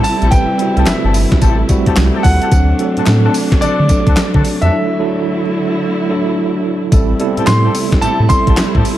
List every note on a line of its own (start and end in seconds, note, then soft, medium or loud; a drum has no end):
0.00 2.48 C3 medium
0.00 0.31 G3 medium
0.00 2.48 G3 medium
0.00 6.88 A3 medium
0.00 0.32 C4 medium
0.00 0.32 E4 medium
0.00 2.48 E4 loud
0.00 2.53 G4 medium
0.00 2.53 A4 medium
0.00 0.32 A5 loud
0.04 open hi-hat medium
0.04 tambourine medium
0.21 0.29 A#1 medium
0.21 0.31 C4 medium
0.21 0.31 E4 medium
0.21 0.31 G4 medium
0.21 0.31 A4 medium
0.21 closed hi-hat medium
0.31 0.45 A1 loud
0.31 0.55 G3 medium
0.31 0.55 C4 medium
0.31 0.55 E4 medium
0.31 0.55 B4 medium
0.31 0.88 G5 loud
0.31 kick loud
0.31 closed hi-hat medium
0.31 tambourine medium
0.59 1.45 G3 medium
0.59 1.45 C4 medium
0.59 1.45 E4 medium
0.59 1.46 F#4 medium
0.59 closed hi-hat medium
0.76 0.84 C2 medium
0.76 0.86 C4 medium
0.76 0.86 E4 medium
0.76 0.86 G4 medium
0.76 0.86 A4 medium
0.76 closed hi-hat medium
0.86 0.93 G1 soft
0.86 1.92 E5 medium
0.86 snare loud
0.86 clap medium
0.86 closed hi-hat medium
0.86 tambourine medium
1.04 1.26 G1 loud
1.04 1.14 C4 medium
1.04 1.14 E4 medium
1.04 1.14 G4 medium
1.04 1.14 A4 medium
1.14 open hi-hat loud
1.14 tambourine medium
1.32 kick medium
1.32 snare medium
1.32 closed hi-hat medium
1.41 1.63 A1 loud
1.41 1.58 C4 medium
1.41 1.59 E4 medium
1.41 1.59 G4 medium
1.41 1.59 A4 medium
1.41 kick medium
1.41 closed hi-hat medium
1.41 tambourine medium
1.69 2.35 G3 medium
1.69 2.36 C4 medium
1.69 2.36 E4 medium
1.69 2.36 F#4 medium
1.69 kick medium
1.69 closed hi-hat medium
1.69 tambourine medium
1.86 1.94 C2 medium
1.86 1.96 C4 medium
1.86 1.96 E4 medium
1.86 1.96 G4 medium
1.86 1.96 A4 medium
1.86 kick medium
1.86 closed hi-hat medium
1.96 2.10 C2 medium
1.96 snare loud
1.96 clap medium
1.96 closed hi-hat medium
1.96 tambourine loud
2.14 2.24 C4 medium
2.14 2.24 E4 medium
2.14 2.24 G4 medium
2.14 2.24 A4 medium
2.23 2.38 D#2 loud
2.23 3.65 F#5 loud
2.23 kick medium
2.23 open hi-hat medium
2.23 tambourine medium
2.41 2.51 C4 medium
2.41 2.51 E4 medium
2.41 2.51 G4 medium
2.41 2.51 A4 medium
2.41 closed hi-hat medium
2.52 2.73 D2 loud
2.52 4.70 C3 medium
2.52 2.75 F#3 medium
2.52 6.88 F#3 medium
2.52 2.75 C4 medium
2.52 4.70 D4 loud
2.52 2.75 D4 medium
2.52 2.75 A4 medium
2.52 kick loud
2.52 closed hi-hat medium
2.52 tambourine medium
2.79 3.65 F#3 medium
2.79 3.65 C4 medium
2.79 3.66 D4 medium
2.79 3.66 A4 medium
2.79 closed hi-hat medium
2.97 3.01 A2 soft
2.97 3.06 C4 medium
2.97 3.06 D4 medium
2.97 3.06 F#4 medium
2.97 3.06 A4 medium
2.97 closed hi-hat soft
3.06 3.28 A2 medium
3.06 snare loud
3.06 clap medium
3.06 closed hi-hat medium
3.06 tambourine medium
3.24 3.34 C4 medium
3.24 3.34 D4 medium
3.24 3.34 F#4 medium
3.24 3.34 A4 medium
3.34 open hi-hat medium
3.34 tambourine medium
3.52 kick loud
3.52 snare medium
3.52 closed hi-hat medium
3.61 3.69 D3 medium
3.61 3.79 C4 medium
3.61 3.79 D4 medium
3.61 3.79 F#4 medium
3.61 3.79 A4 medium
3.61 4.65 D5 loud
3.61 closed hi-hat medium
3.61 tambourine medium
3.79 3.87 D3 medium
3.89 4.56 F#3 medium
3.89 4.56 C4 medium
3.89 4.56 D4 medium
3.89 4.56 A4 medium
3.89 kick medium
3.89 closed hi-hat medium
3.89 tambourine medium
4.07 4.15 D2 medium
4.07 4.16 C4 medium
4.07 4.17 D4 medium
4.07 4.17 F#4 medium
4.07 4.17 A4 medium
4.07 kick medium
4.07 closed hi-hat soft
4.17 snare loud
4.17 clap medium
4.17 closed hi-hat medium
4.17 tambourine medium
4.34 4.42 D3 loud
4.34 4.44 C4 medium
4.34 4.44 D4 medium
4.34 4.44 F#4 medium
4.34 4.44 A4 medium
4.34 kick medium
4.45 open hi-hat medium
4.45 tambourine medium
4.62 4.70 F2 medium
4.62 4.71 C4 medium
4.62 4.71 D4 medium
4.62 4.72 F#4 medium
4.62 4.72 A4 medium
4.62 5.40 E5 loud
4.62 closed hi-hat medium
4.72 6.90 D3 medium
4.72 4.95 F#3 medium
4.72 4.95 D4 medium
4.72 6.90 E4 loud
4.72 4.95 E4 medium
4.72 4.96 A4 medium
4.99 5.85 F#3 medium
4.99 5.85 D4 medium
4.99 5.86 E4 medium
4.99 5.86 A4 medium
6.09 6.76 F#3 medium
6.09 6.76 D4 medium
6.09 6.76 E4 medium
6.09 6.76 A4 medium
6.91 7.13 A1 loud
6.91 8.98 C3 medium
6.91 8.98 G3 medium
6.91 7.15 G3 medium
6.91 8.98 A3 medium
6.91 7.15 C4 medium
6.91 8.98 E4 loud
6.91 7.16 E4 medium
6.91 7.16 A4 loud
6.91 kick loud
6.91 closed hi-hat medium
6.91 tambourine medium
7.20 8.05 G3 medium
7.20 7.28 B3 medium
7.20 8.06 E4 medium
7.20 8.06 A4 loud
7.20 closed hi-hat medium
7.27 8.09 C4 medium
7.37 7.41 A2 soft
7.37 7.47 C4 medium
7.37 7.47 E4 medium
7.37 7.47 G4 medium
7.37 7.47 A4 medium
7.37 closed hi-hat medium
7.46 7.69 A2 medium
7.46 8.03 C6 loud
7.46 snare loud
7.46 clap medium
7.46 closed hi-hat medium
7.46 tambourine medium
7.64 7.74 C4 medium
7.64 7.74 E4 medium
7.64 7.74 G4 medium
7.64 7.74 A4 medium
7.75 open hi-hat loud
7.75 tambourine medium
7.92 kick medium
7.92 snare medium
7.92 closed hi-hat medium
8.01 8.09 A2 medium
8.01 8.19 C4 medium
8.01 8.19 E4 medium
8.01 8.19 G4 medium
8.01 8.19 A4 medium
8.01 8.30 A5 loud
8.01 closed hi-hat medium
8.01 tambourine medium
8.20 8.27 A2 loud
8.29 8.96 G3 medium
8.29 8.96 C4 medium
8.29 8.97 E4 medium
8.29 8.97 A4 medium
8.29 8.98 C6 loud
8.29 kick medium
8.29 closed hi-hat medium
8.29 tambourine medium
8.47 8.55 A1 medium
8.47 8.57 C4 medium
8.47 8.57 E4 medium
8.47 8.57 G4 medium
8.47 8.57 A4 medium
8.47 kick medium
8.47 closed hi-hat medium
8.57 snare loud
8.57 clap medium
8.57 closed hi-hat medium
8.57 tambourine loud
8.74 8.83 A2 medium
8.74 8.84 C4 medium
8.74 8.84 E4 medium
8.74 8.84 G4 medium
8.74 8.84 A4 medium
8.74 kick medium
8.85 open hi-hat medium
8.85 tambourine medium